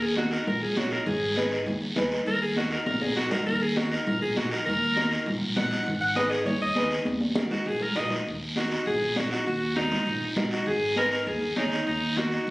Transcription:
Already playing: D#2
0.02 G#4
0.16 D#4 F#4 A#4, high conga, short guiro
0.31 A#4, short guiro
0.46 A#1 A#4, high conga, low conga, long guiro
0.62 A#1 G#4
0.76 A#1 D#4 F#4 C#5, high conga, short guiro
0.91 A#4, short guiro
1.06 G#1 G#4, high conga, low conga, long guiro
1.36 D#4 G#4 B4, high conga, short guiro
1.51 short guiro
1.66 D#2, high conga, low conga, long guiro
1.81 D#2
1.96 D#2 D#4 G#4 B4, high conga, low conga, short guiro
2.11 short guiro
2.26 D#2 A#4, high conga, low conga, long guiro
2.42 G#4
2.56 D#4 F#4 A#4, high conga, short guiro
2.71 A#4, short guiro
2.86 A#1 A#4, high conga, long guiro
3.01 A#1 G#4, high conga
3.16 A#1 D#4 F#4 A#4, short guiro
3.31 A#4, low conga, short guiro
3.46 D#2 A#4, high conga, low conga, long guiro
3.62 G#4
3.76 D#4 F#4 A#4, high conga, short guiro
3.92 A#4, short guiro
4.06 A#1 A#4, high conga, low conga, long guiro
4.22 A#1 G#4
4.36 A#1 D#4 F#4 A#4, high conga, short guiro
4.51 A#4, short guiro
4.66 D#2 A#4, high conga, low conga, long guiro
4.96 D#4 F#4 A#4, high conga, short guiro
5.11 short guiro
5.26 A#1, high conga, low conga, long guiro
5.41 A#1
5.56 D#4 F#4 A#4 F#5, high conga, low conga, short guiro
5.71 short guiro
5.86 G#1, high conga, low conga, long guiro
6.01 F#5
6.15 D#4 G#4 B4 D#5, high conga, short guiro
6.31 G#4, short guiro
6.46 D#2 C#5, high conga, low conga, long guiro
6.61 D#2 D#5
6.76 D#4 G#4 B4, high conga, short guiro
6.91 short guiro
7.05 D#2, high conga, long guiro
7.20 high conga
7.36 D#4 F#4 A#4, high conga, short guiro
7.51 F#4, low conga, short guiro
7.66 A#1 G#4, low conga, long guiro
7.81 A#1 A#4, low conga
7.96 A#1 D#4 F#4 A#4 D#5, low conga, short guiro
8.10 low conga, short guiro
8.26 D#2, high conga, long guiro
8.56 D#4 F#4 A#4, high conga, short guiro
8.71 short guiro
8.86 A#1 G#4, high conga, long guiro
9.02 A#1
9.16 A#1 D#4 F#4 A#4, high conga, short guiro
9.31 F#4, short guiro
9.46 D#2 F#4, high conga, long guiro
9.76 D#4 F#4 A#4, high conga, short guiro
9.91 low conga, short guiro
10.06 A#1, high conga, long guiro
10.21 A#1
10.36 A#1 D#4 F#4 A#4, high conga, low conga, short guiro
10.51 F#4, short guiro
10.66 G#1 G#4, high conga, long guiro
10.96 D#4 G#4 A#4 B4, high conga, short guiro
11.11 A#4, short guiro
11.27 D#2 G#4, high conga, long guiro
11.42 D#2
11.56 D#2 D#4 G#4 C#5, high conga, short guiro
11.72 short guiro
11.87 D#2 D#4, high conga, long guiro
12.17 D#4 F#4 A#4, high conga, short guiro
12.32 short guiro
12.47 high conga, long guiro

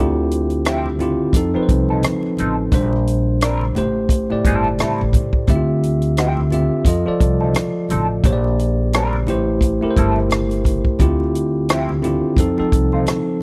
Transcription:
Already playing: D2 D3 C4 E4
0.00 F4 G4
0.31 closed hi-hat
0.50 closed hi-hat
0.65 F3 C4 E4 G4, cross-stick, closed hi-hat, muted conga
0.86 muted conga, high conga
0.99 D3 C4 E4 F4 G4, closed hi-hat, high conga, low conga
1.33 F2 F3 C4 D#4 A4, kick, closed hi-hat, muted conga
1.54 F3 C4 D#4 B4, muted upright bass stroke
1.63 C5
1.69 C2, kick, closed hi-hat
1.89 F3 C4 D#4 A4, high conga
2.03 cross-stick, closed hi-hat, muted conga, high conga
2.23 muted conga
2.37 A1 F3 C4 D#4 A4, closed hi-hat, high conga
2.72 A#1 A#2 G3 D4 C5, kick, closed hi-hat, muted conga, low conga
2.93 muted conga
3.07 closed hi-hat
3.41 G3 C4 D4 A#4, cross-stick, closed hi-hat
3.61 muted conga, high conga
3.75 A1 A2 A3 G4 C5, closed hi-hat, high conga, low conga
4.09 muted clean electric guitar stroke, kick, closed hi-hat
4.30 A2 A3 G4 D5, muted upright bass stroke, muted conga
4.45 G1 G3 C4 E4 A4, kick, closed hi-hat
4.64 high conga
4.78 G3 C4 E4 A4, muted upright bass stroke, cross-stick, closed hi-hat, muted conga, high conga
4.98 A1, muted conga
5.13 A2, kick, closed hi-hat, high conga
5.33 kick
5.47 D2 D3 C4 E4 G4 E5, kick, closed hi-hat, muted conga, low conga
5.56 F4
5.83 closed hi-hat
6.02 closed hi-hat
6.17 F3 C4 E4 G4, cross-stick, closed hi-hat
6.37 muted conga, high conga
6.50 D3 C4 F4 G4 E5, closed hi-hat, high conga, low conga
6.85 F2 F3 F4 A4 D#5, kick, closed hi-hat, muted conga
7.06 F3 F4 A4 D5, muted upright bass stroke
7.20 C2, kick, closed hi-hat
7.40 F3 C4 D#4 A4, high conga
7.54 cross-stick, closed hi-hat, muted conga, high conga
7.89 A1 F3 C4 D#4 A4, closed hi-hat, high conga
8.24 A#1 A#3 G4 C5 C#5, kick, closed hi-hat, muted conga, low conga
8.33 D5
8.44 muted conga
8.59 closed hi-hat
8.93 G3 C4 D4 A#4, cross-stick, closed hi-hat
9.13 muted conga, high conga
9.27 A1 A3 E4 G4 C5, closed hi-hat, high conga, low conga
9.61 muted clean electric guitar stroke, kick, closed hi-hat
9.81 A3 E4 G4 A#4, muted upright bass stroke, muted conga
9.90 C5
9.97 G1 G3 C4 E4 A4, kick, closed hi-hat
10.16 high conga
10.30 cross-stick, closed hi-hat, muted conga, high conga
10.50 closed hi-hat, muted conga
10.64 kick, closed hi-hat, high conga
10.85 kick
10.99 D2 D3 C4 E4 F4 G4, kick, closed hi-hat, muted conga, low conga
11.20 muted conga
11.35 closed hi-hat
11.69 F3 C4 E4 G4, cross-stick, closed hi-hat
11.89 muted conga, high conga
12.02 D3 C4 E4 F4 G4, closed hi-hat, high conga, low conga
12.37 F2 F3 C4 D#4 A4, kick, closed hi-hat, muted conga
12.57 F3 C4 D#4 A4, muted upright bass stroke, muted conga
12.72 C2, kick, closed hi-hat
12.92 A3 D#4 F4 C5, high conga
13.06 cross-stick, closed hi-hat, muted conga, high conga

